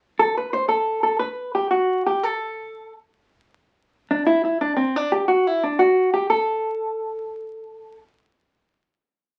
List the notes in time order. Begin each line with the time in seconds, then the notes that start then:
0.19 A4
0.37 B4
0.53 C5
0.69 A4
1.03 A4
1.19 B4
1.55 G4
1.71 F#4
2.06 G4
2.23 A4
4.11 D4
4.27 E4
4.45 E4
4.61 D4
4.77 C4
4.96 D4
5.12 G4
5.28 F#4
5.47 E4
5.64 D4
5.79 F#4
6.14 G4
6.30 A4